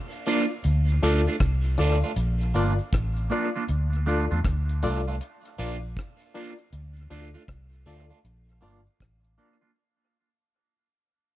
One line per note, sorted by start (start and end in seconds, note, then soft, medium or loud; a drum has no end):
0.12 closed hi-hat soft
0.26 0.44 A#3 medium
0.26 0.49 D4 medium
0.26 0.45 D4 medium
0.26 0.49 F4 medium
0.26 0.45 F4 medium
0.26 0.49 A#4 medium
0.26 0.50 D5 medium
0.26 closed hi-hat medium
0.64 1.01 D2 medium
0.64 closed hi-hat medium
0.88 closed hi-hat soft
1.03 1.26 D2 medium
1.03 1.20 A3 loud
1.03 1.25 D4 medium
1.03 1.21 D4 medium
1.03 1.25 F4 medium
1.03 1.21 F4 loud
1.03 1.25 A4 medium
1.03 1.25 D5 loud
1.03 closed hi-hat medium
1.28 1.35 A3 medium
1.28 1.35 D4 medium
1.28 1.35 F4 medium
1.40 1.77 C2 medium
1.40 kick loud
1.40 cross-stick loud
1.40 closed hi-hat medium
1.65 closed hi-hat medium
1.78 2.02 D2 medium
1.78 1.97 A3 medium
1.78 2.01 D4 medium
1.78 1.97 D4 medium
1.78 2.01 F4 medium
1.78 1.97 F4 medium
1.78 2.01 A4 medium
1.78 2.01 D5 loud
1.78 closed hi-hat medium
2.02 2.11 A3 medium
2.02 2.11 D4 medium
2.02 2.11 F4 medium
2.02 closed hi-hat soft
2.16 2.52 A#1 loud
2.16 closed hi-hat medium
2.41 closed hi-hat medium
2.54 2.78 G1 medium
2.54 2.72 A#3 medium
2.54 2.77 D4 medium
2.54 2.73 D4 medium
2.54 2.77 F4 medium
2.54 2.73 F4 medium
2.54 2.77 A#4 medium
2.54 2.77 D5 loud
2.54 closed hi-hat medium
2.79 closed hi-hat soft
2.93 3.29 A1 medium
2.93 kick loud
2.93 cross-stick loud
2.93 closed hi-hat loud
3.17 closed hi-hat soft
3.30 3.48 A#3 medium
3.30 3.53 D4 medium
3.30 3.48 D4 medium
3.30 3.48 F4 medium
3.30 3.53 F4 medium
3.30 3.53 A#4 medium
3.30 3.54 D5 medium
3.30 closed hi-hat medium
3.55 3.63 A#3 medium
3.55 3.63 D4 medium
3.55 3.63 F4 medium
3.68 4.28 D2 medium
3.68 closed hi-hat medium
3.93 closed hi-hat soft
4.06 4.24 A3 medium
4.06 4.24 D4 medium
4.06 4.29 D4 medium
4.06 4.29 F4 medium
4.06 4.25 F4 medium
4.06 4.29 A4 medium
4.06 4.30 D5 loud
4.06 closed hi-hat medium
4.31 4.44 E2 medium
4.31 4.39 A3 soft
4.31 4.39 D4 medium
4.31 4.38 F4 medium
4.31 closed hi-hat soft
4.44 4.85 D2 loud
4.44 kick loud
4.44 cross-stick loud
4.44 closed hi-hat medium
4.69 closed hi-hat medium
4.83 5.19 C2 medium
4.83 5.00 A3 medium
4.83 5.05 D4 medium
4.83 5.00 D4 medium
4.83 5.05 F4 medium
4.83 5.01 F4 medium
4.83 5.05 A4 medium
4.83 5.06 D5 loud
4.83 closed hi-hat medium
5.08 5.15 A3 medium
5.08 5.15 D4 medium
5.08 5.15 F4 medium
5.21 closed hi-hat medium
5.45 closed hi-hat soft
5.58 5.95 A#1 medium
5.58 5.76 A#3 medium
5.58 5.81 D4 medium
5.58 5.76 D4 medium
5.58 5.81 F4 medium
5.58 5.77 F4 loud
5.58 5.81 A#4 medium
5.58 5.81 D5 loud
5.58 closed hi-hat medium
5.97 kick loud
5.97 cross-stick loud
5.97 closed hi-hat medium
6.21 closed hi-hat soft
6.34 6.52 A#3 medium
6.34 6.57 D4 medium
6.34 6.52 D4 medium
6.34 6.57 F4 medium
6.34 6.53 F4 medium
6.34 6.57 A#4 medium
6.34 6.57 D5 medium
6.34 closed hi-hat medium
6.59 closed hi-hat soft
6.73 7.09 D2 loud
6.73 closed hi-hat medium
6.97 closed hi-hat soft
7.10 7.34 D2 medium
7.10 7.28 A3 medium
7.10 7.33 D4 medium
7.10 7.28 D4 medium
7.10 7.33 F4 medium
7.10 7.29 F4 medium
7.10 7.33 A4 medium
7.10 7.34 D5 loud
7.10 closed hi-hat medium
7.34 7.43 A3 soft
7.34 7.43 D4 medium
7.34 7.42 F4 medium
7.34 closed hi-hat soft
7.48 7.85 C2 medium
7.48 kick loud
7.48 cross-stick loud
7.48 closed hi-hat medium
7.73 closed hi-hat medium
7.86 8.10 D2 medium
7.86 8.04 A3 medium
7.86 8.09 D4 medium
7.86 8.04 D4 medium
7.86 8.09 F4 medium
7.86 8.05 F4 medium
7.86 8.09 A4 medium
7.86 8.09 D5 loud
7.86 closed hi-hat medium
8.10 8.19 A3 soft
8.10 8.18 D4 medium
8.10 8.18 F4 medium
8.24 8.61 A#1 loud
8.24 closed hi-hat medium
8.49 closed hi-hat medium
8.61 8.86 G1 medium
8.61 8.79 A#3 medium
8.61 8.85 D4 medium
8.61 8.80 D4 medium
8.61 8.85 F4 medium
8.61 8.80 F4 medium
8.61 8.85 A#4 medium
8.61 8.85 D5 medium
8.61 closed hi-hat medium
8.87 closed hi-hat soft
9.00 9.37 A1 medium
9.00 kick loud
9.00 cross-stick loud
9.00 closed hi-hat medium
9.24 closed hi-hat soft
9.38 9.56 A#3 medium
9.38 9.61 D4 medium
9.38 9.56 D4 medium
9.38 9.61 F4 medium
9.38 9.57 F4 medium
9.38 9.61 A#4 medium
9.38 9.61 D5 medium
9.38 closed hi-hat medium
9.61 9.70 A#3 soft
9.61 9.70 D4 medium
9.61 9.70 F4 medium